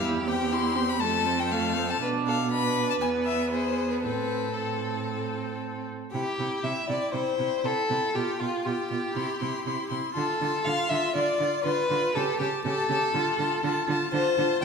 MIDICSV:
0, 0, Header, 1, 5, 480
1, 0, Start_track
1, 0, Key_signature, 0, "minor"
1, 0, Tempo, 500835
1, 19, Time_signature, 4, 2, 24, 8
1, 3380, Tempo, 522193
1, 5778, Key_signature, 0, "major"
1, 5780, Tempo, 505476
1, 7220, Tempo, 497925
1, 13960, End_track
2, 0, Start_track
2, 0, Title_t, "Violin"
2, 0, Program_c, 0, 40
2, 272, Note_on_c, 0, 79, 67
2, 502, Note_on_c, 0, 84, 67
2, 516, Note_off_c, 0, 79, 0
2, 857, Note_on_c, 0, 83, 63
2, 871, Note_off_c, 0, 84, 0
2, 960, Note_on_c, 0, 81, 71
2, 974, Note_off_c, 0, 83, 0
2, 1338, Note_on_c, 0, 79, 62
2, 1352, Note_off_c, 0, 81, 0
2, 1448, Note_on_c, 0, 77, 64
2, 1462, Note_off_c, 0, 79, 0
2, 1820, Note_on_c, 0, 81, 61
2, 1835, Note_off_c, 0, 77, 0
2, 1938, Note_off_c, 0, 81, 0
2, 2175, Note_on_c, 0, 77, 55
2, 2398, Note_off_c, 0, 77, 0
2, 2406, Note_on_c, 0, 83, 70
2, 2761, Note_off_c, 0, 83, 0
2, 2783, Note_on_c, 0, 81, 58
2, 2829, Note_off_c, 0, 81, 0
2, 2886, Note_on_c, 0, 80, 53
2, 2962, Note_off_c, 0, 80, 0
2, 3115, Note_on_c, 0, 76, 49
2, 3350, Note_off_c, 0, 76, 0
2, 3356, Note_on_c, 0, 72, 52
2, 3728, Note_on_c, 0, 71, 38
2, 3742, Note_off_c, 0, 72, 0
2, 3834, Note_off_c, 0, 71, 0
2, 3839, Note_on_c, 0, 71, 55
2, 4315, Note_on_c, 0, 69, 41
2, 4329, Note_off_c, 0, 71, 0
2, 5288, Note_off_c, 0, 69, 0
2, 5757, Note_on_c, 0, 79, 43
2, 5993, Note_off_c, 0, 79, 0
2, 5999, Note_on_c, 0, 79, 36
2, 6224, Note_off_c, 0, 79, 0
2, 6230, Note_on_c, 0, 79, 37
2, 6465, Note_off_c, 0, 79, 0
2, 6471, Note_on_c, 0, 79, 36
2, 6704, Note_off_c, 0, 79, 0
2, 6710, Note_on_c, 0, 79, 41
2, 6947, Note_off_c, 0, 79, 0
2, 6953, Note_on_c, 0, 79, 31
2, 7194, Note_off_c, 0, 79, 0
2, 7199, Note_on_c, 0, 79, 37
2, 7427, Note_off_c, 0, 79, 0
2, 7433, Note_on_c, 0, 79, 35
2, 7668, Note_off_c, 0, 79, 0
2, 7674, Note_on_c, 0, 79, 40
2, 7924, Note_off_c, 0, 79, 0
2, 7930, Note_on_c, 0, 79, 36
2, 8173, Note_off_c, 0, 79, 0
2, 8180, Note_on_c, 0, 79, 39
2, 8419, Note_off_c, 0, 79, 0
2, 8424, Note_on_c, 0, 79, 42
2, 8658, Note_off_c, 0, 79, 0
2, 8664, Note_on_c, 0, 84, 38
2, 8901, Note_off_c, 0, 84, 0
2, 8906, Note_on_c, 0, 84, 35
2, 9131, Note_off_c, 0, 84, 0
2, 9137, Note_on_c, 0, 84, 40
2, 9374, Note_off_c, 0, 84, 0
2, 9379, Note_on_c, 0, 84, 40
2, 9610, Note_off_c, 0, 84, 0
2, 9615, Note_on_c, 0, 84, 43
2, 9858, Note_off_c, 0, 84, 0
2, 9863, Note_on_c, 0, 84, 39
2, 10096, Note_off_c, 0, 84, 0
2, 10102, Note_on_c, 0, 84, 38
2, 10339, Note_off_c, 0, 84, 0
2, 10345, Note_on_c, 0, 84, 45
2, 10584, Note_off_c, 0, 84, 0
2, 10591, Note_on_c, 0, 84, 44
2, 10824, Note_off_c, 0, 84, 0
2, 10830, Note_on_c, 0, 84, 40
2, 11067, Note_off_c, 0, 84, 0
2, 11075, Note_on_c, 0, 84, 40
2, 11297, Note_off_c, 0, 84, 0
2, 11303, Note_on_c, 0, 84, 41
2, 11543, Note_off_c, 0, 84, 0
2, 11558, Note_on_c, 0, 81, 47
2, 11784, Note_off_c, 0, 81, 0
2, 11790, Note_on_c, 0, 81, 39
2, 12028, Note_off_c, 0, 81, 0
2, 12034, Note_on_c, 0, 81, 50
2, 12269, Note_off_c, 0, 81, 0
2, 12289, Note_on_c, 0, 81, 46
2, 12515, Note_off_c, 0, 81, 0
2, 12522, Note_on_c, 0, 81, 51
2, 12746, Note_off_c, 0, 81, 0
2, 12752, Note_on_c, 0, 81, 43
2, 12976, Note_off_c, 0, 81, 0
2, 12981, Note_on_c, 0, 81, 49
2, 13218, Note_off_c, 0, 81, 0
2, 13244, Note_on_c, 0, 81, 49
2, 13463, Note_off_c, 0, 81, 0
2, 13469, Note_on_c, 0, 81, 49
2, 13692, Note_off_c, 0, 81, 0
2, 13698, Note_on_c, 0, 81, 52
2, 13927, Note_off_c, 0, 81, 0
2, 13960, End_track
3, 0, Start_track
3, 0, Title_t, "Violin"
3, 0, Program_c, 1, 40
3, 0, Note_on_c, 1, 67, 64
3, 975, Note_off_c, 1, 67, 0
3, 981, Note_on_c, 1, 69, 56
3, 1920, Note_off_c, 1, 69, 0
3, 1934, Note_on_c, 1, 71, 53
3, 2011, Note_off_c, 1, 71, 0
3, 2186, Note_on_c, 1, 69, 51
3, 2263, Note_off_c, 1, 69, 0
3, 2434, Note_on_c, 1, 71, 55
3, 3369, Note_off_c, 1, 71, 0
3, 3383, Note_on_c, 1, 68, 43
3, 3847, Note_off_c, 1, 68, 0
3, 3864, Note_on_c, 1, 69, 42
3, 5511, Note_off_c, 1, 69, 0
3, 5774, Note_on_c, 1, 67, 57
3, 6256, Note_on_c, 1, 76, 60
3, 6271, Note_off_c, 1, 67, 0
3, 6491, Note_off_c, 1, 76, 0
3, 6497, Note_on_c, 1, 74, 54
3, 6719, Note_off_c, 1, 74, 0
3, 6725, Note_on_c, 1, 72, 60
3, 7220, Note_on_c, 1, 69, 70
3, 7234, Note_off_c, 1, 72, 0
3, 7698, Note_on_c, 1, 67, 56
3, 7713, Note_off_c, 1, 69, 0
3, 7935, Note_on_c, 1, 65, 56
3, 7950, Note_off_c, 1, 67, 0
3, 8185, Note_on_c, 1, 67, 53
3, 8199, Note_off_c, 1, 65, 0
3, 9388, Note_off_c, 1, 67, 0
3, 9632, Note_on_c, 1, 69, 61
3, 10106, Note_on_c, 1, 77, 70
3, 10120, Note_off_c, 1, 69, 0
3, 10342, Note_on_c, 1, 76, 62
3, 10356, Note_off_c, 1, 77, 0
3, 10587, Note_off_c, 1, 76, 0
3, 10596, Note_on_c, 1, 74, 69
3, 11057, Note_off_c, 1, 74, 0
3, 11063, Note_on_c, 1, 71, 77
3, 11556, Note_on_c, 1, 69, 60
3, 11570, Note_off_c, 1, 71, 0
3, 11778, Note_off_c, 1, 69, 0
3, 11784, Note_on_c, 1, 67, 62
3, 11861, Note_off_c, 1, 67, 0
3, 12017, Note_on_c, 1, 69, 68
3, 13193, Note_off_c, 1, 69, 0
3, 13464, Note_on_c, 1, 72, 78
3, 13905, Note_off_c, 1, 72, 0
3, 13960, End_track
4, 0, Start_track
4, 0, Title_t, "Viola"
4, 0, Program_c, 2, 41
4, 14, Note_on_c, 2, 64, 48
4, 261, Note_on_c, 2, 60, 41
4, 275, Note_off_c, 2, 64, 0
4, 501, Note_on_c, 2, 64, 46
4, 515, Note_off_c, 2, 60, 0
4, 722, Note_on_c, 2, 60, 41
4, 737, Note_off_c, 2, 64, 0
4, 963, Note_off_c, 2, 60, 0
4, 969, Note_on_c, 2, 57, 44
4, 1212, Note_on_c, 2, 60, 41
4, 1226, Note_off_c, 2, 57, 0
4, 1457, Note_on_c, 2, 57, 49
4, 1471, Note_off_c, 2, 60, 0
4, 1696, Note_on_c, 2, 60, 42
4, 1711, Note_off_c, 2, 57, 0
4, 1930, Note_off_c, 2, 60, 0
4, 1936, Note_on_c, 2, 62, 50
4, 2381, Note_off_c, 2, 62, 0
4, 2418, Note_on_c, 2, 62, 43
4, 2889, Note_on_c, 2, 59, 39
4, 2903, Note_off_c, 2, 62, 0
4, 3853, Note_off_c, 2, 59, 0
4, 3861, Note_on_c, 2, 60, 36
4, 4333, Note_off_c, 2, 60, 0
4, 4341, Note_on_c, 2, 60, 34
4, 5565, Note_off_c, 2, 60, 0
4, 5776, Note_on_c, 2, 64, 38
4, 6010, Note_off_c, 2, 64, 0
4, 6015, Note_on_c, 2, 64, 34
4, 6248, Note_off_c, 2, 64, 0
4, 6254, Note_on_c, 2, 64, 36
4, 6474, Note_off_c, 2, 64, 0
4, 6480, Note_on_c, 2, 64, 36
4, 6722, Note_off_c, 2, 64, 0
4, 6727, Note_on_c, 2, 64, 38
4, 6960, Note_off_c, 2, 64, 0
4, 6966, Note_on_c, 2, 64, 35
4, 7197, Note_off_c, 2, 64, 0
4, 7203, Note_on_c, 2, 64, 41
4, 7442, Note_off_c, 2, 64, 0
4, 7448, Note_on_c, 2, 64, 33
4, 7691, Note_off_c, 2, 64, 0
4, 7694, Note_on_c, 2, 65, 38
4, 7922, Note_off_c, 2, 65, 0
4, 7928, Note_on_c, 2, 65, 31
4, 8166, Note_off_c, 2, 65, 0
4, 8172, Note_on_c, 2, 65, 38
4, 8406, Note_off_c, 2, 65, 0
4, 8412, Note_on_c, 2, 65, 34
4, 8644, Note_off_c, 2, 65, 0
4, 8650, Note_on_c, 2, 64, 39
4, 8892, Note_off_c, 2, 64, 0
4, 8897, Note_on_c, 2, 64, 37
4, 9138, Note_off_c, 2, 64, 0
4, 9150, Note_on_c, 2, 64, 40
4, 9384, Note_off_c, 2, 64, 0
4, 9391, Note_on_c, 2, 64, 35
4, 9618, Note_off_c, 2, 64, 0
4, 9623, Note_on_c, 2, 65, 46
4, 9860, Note_off_c, 2, 65, 0
4, 9865, Note_on_c, 2, 65, 37
4, 10101, Note_off_c, 2, 65, 0
4, 10107, Note_on_c, 2, 65, 38
4, 10344, Note_off_c, 2, 65, 0
4, 10349, Note_on_c, 2, 65, 43
4, 10576, Note_off_c, 2, 65, 0
4, 10582, Note_on_c, 2, 65, 40
4, 10823, Note_off_c, 2, 65, 0
4, 10834, Note_on_c, 2, 65, 39
4, 11061, Note_off_c, 2, 65, 0
4, 11067, Note_on_c, 2, 65, 46
4, 11305, Note_off_c, 2, 65, 0
4, 11309, Note_on_c, 2, 65, 41
4, 11547, Note_off_c, 2, 65, 0
4, 11556, Note_on_c, 2, 67, 45
4, 11782, Note_off_c, 2, 67, 0
4, 11788, Note_on_c, 2, 67, 39
4, 12027, Note_off_c, 2, 67, 0
4, 12033, Note_on_c, 2, 67, 45
4, 12268, Note_off_c, 2, 67, 0
4, 12274, Note_on_c, 2, 67, 43
4, 12507, Note_off_c, 2, 67, 0
4, 12513, Note_on_c, 2, 65, 50
4, 12745, Note_off_c, 2, 65, 0
4, 12757, Note_on_c, 2, 65, 45
4, 12980, Note_off_c, 2, 65, 0
4, 12985, Note_on_c, 2, 65, 51
4, 13209, Note_off_c, 2, 65, 0
4, 13215, Note_on_c, 2, 65, 49
4, 13444, Note_off_c, 2, 65, 0
4, 13450, Note_on_c, 2, 65, 53
4, 13689, Note_off_c, 2, 65, 0
4, 13704, Note_on_c, 2, 65, 47
4, 13935, Note_off_c, 2, 65, 0
4, 13960, End_track
5, 0, Start_track
5, 0, Title_t, "Cello"
5, 0, Program_c, 3, 42
5, 21, Note_on_c, 3, 40, 52
5, 974, Note_on_c, 3, 41, 54
5, 988, Note_off_c, 3, 40, 0
5, 1930, Note_off_c, 3, 41, 0
5, 1936, Note_on_c, 3, 47, 46
5, 2855, Note_off_c, 3, 47, 0
5, 2894, Note_on_c, 3, 40, 42
5, 3856, Note_on_c, 3, 45, 37
5, 3870, Note_off_c, 3, 40, 0
5, 5590, Note_off_c, 3, 45, 0
5, 5782, Note_on_c, 3, 48, 46
5, 5858, Note_off_c, 3, 48, 0
5, 6024, Note_on_c, 3, 48, 39
5, 6100, Note_off_c, 3, 48, 0
5, 6256, Note_on_c, 3, 48, 47
5, 6332, Note_off_c, 3, 48, 0
5, 6494, Note_on_c, 3, 48, 42
5, 6570, Note_off_c, 3, 48, 0
5, 6727, Note_on_c, 3, 48, 45
5, 6803, Note_off_c, 3, 48, 0
5, 6970, Note_on_c, 3, 48, 40
5, 7046, Note_off_c, 3, 48, 0
5, 7211, Note_on_c, 3, 48, 42
5, 7288, Note_off_c, 3, 48, 0
5, 7460, Note_on_c, 3, 48, 43
5, 7537, Note_off_c, 3, 48, 0
5, 7700, Note_on_c, 3, 47, 46
5, 7777, Note_off_c, 3, 47, 0
5, 7946, Note_on_c, 3, 47, 41
5, 8023, Note_off_c, 3, 47, 0
5, 8188, Note_on_c, 3, 47, 44
5, 8266, Note_off_c, 3, 47, 0
5, 8430, Note_on_c, 3, 47, 39
5, 8507, Note_off_c, 3, 47, 0
5, 8669, Note_on_c, 3, 48, 47
5, 8747, Note_off_c, 3, 48, 0
5, 8921, Note_on_c, 3, 48, 44
5, 8998, Note_off_c, 3, 48, 0
5, 9159, Note_on_c, 3, 48, 38
5, 9236, Note_off_c, 3, 48, 0
5, 9400, Note_on_c, 3, 48, 43
5, 9477, Note_off_c, 3, 48, 0
5, 9641, Note_on_c, 3, 50, 47
5, 9718, Note_off_c, 3, 50, 0
5, 9881, Note_on_c, 3, 50, 41
5, 9958, Note_off_c, 3, 50, 0
5, 10118, Note_on_c, 3, 50, 46
5, 10195, Note_off_c, 3, 50, 0
5, 10356, Note_on_c, 3, 50, 46
5, 10433, Note_off_c, 3, 50, 0
5, 10594, Note_on_c, 3, 50, 45
5, 10671, Note_off_c, 3, 50, 0
5, 10836, Note_on_c, 3, 50, 44
5, 10913, Note_off_c, 3, 50, 0
5, 11073, Note_on_c, 3, 50, 43
5, 11150, Note_off_c, 3, 50, 0
5, 11313, Note_on_c, 3, 50, 49
5, 11390, Note_off_c, 3, 50, 0
5, 11559, Note_on_c, 3, 49, 47
5, 11636, Note_off_c, 3, 49, 0
5, 11799, Note_on_c, 3, 49, 45
5, 11876, Note_off_c, 3, 49, 0
5, 12037, Note_on_c, 3, 49, 48
5, 12114, Note_off_c, 3, 49, 0
5, 12275, Note_on_c, 3, 49, 52
5, 12352, Note_off_c, 3, 49, 0
5, 12509, Note_on_c, 3, 50, 52
5, 12586, Note_off_c, 3, 50, 0
5, 12747, Note_on_c, 3, 50, 47
5, 12824, Note_off_c, 3, 50, 0
5, 12984, Note_on_c, 3, 50, 56
5, 13062, Note_off_c, 3, 50, 0
5, 13224, Note_on_c, 3, 50, 56
5, 13302, Note_off_c, 3, 50, 0
5, 13466, Note_on_c, 3, 50, 60
5, 13543, Note_off_c, 3, 50, 0
5, 13701, Note_on_c, 3, 50, 53
5, 13778, Note_off_c, 3, 50, 0
5, 13960, End_track
0, 0, End_of_file